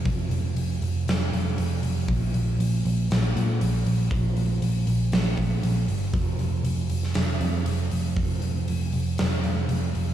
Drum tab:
HH |o-o-o-o-o-o-o-o-|o-o-o-o-o-o-o-o-|o-o-o-o-o-o-o-o-|o-o-o-o-o-o-o-o-|
SD |--------o-------|--------o-------|--------o-------|-------oo-------|
BD |o---------------|o---------------|o---------o-----|o---------------|

HH |o-o-o-o-o-o-o-o-|
SD |--------o-------|
BD |o---------------|